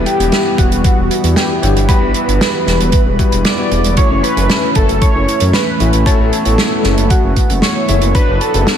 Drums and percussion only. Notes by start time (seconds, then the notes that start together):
0.06 closed hi-hat
0.20 closed hi-hat
0.32 snare, closed hi-hat
0.58 kick, closed hi-hat
0.72 closed hi-hat
0.84 kick, closed hi-hat
1.11 closed hi-hat
1.24 closed hi-hat
1.36 snare, closed hi-hat
1.63 closed hi-hat
1.76 closed hi-hat
1.89 kick, closed hi-hat
2.14 closed hi-hat
2.29 closed hi-hat
2.41 snare, closed hi-hat
2.67 snare, closed hi-hat
2.80 closed hi-hat
2.92 kick, closed hi-hat
3.19 kick, closed hi-hat
3.32 closed hi-hat
3.45 snare, closed hi-hat
3.71 closed hi-hat
3.84 closed hi-hat
3.97 kick, closed hi-hat
4.24 closed hi-hat
4.37 closed hi-hat
4.49 snare, closed hi-hat
4.75 kick, closed hi-hat
4.89 closed hi-hat
5.01 kick, closed hi-hat
5.28 closed hi-hat
5.40 closed hi-hat
5.53 snare, closed hi-hat
5.80 closed hi-hat
5.93 closed hi-hat
6.06 kick, closed hi-hat
6.33 closed hi-hat
6.45 closed hi-hat
6.58 snare, closed hi-hat
6.83 snare, closed hi-hat
6.98 closed hi-hat
7.10 kick, closed hi-hat
7.36 kick, closed hi-hat
7.50 closed hi-hat
7.62 snare, closed hi-hat
7.88 closed hi-hat
8.01 closed hi-hat
8.15 kick, closed hi-hat
8.41 closed hi-hat
8.54 closed hi-hat
8.67 snare, closed hi-hat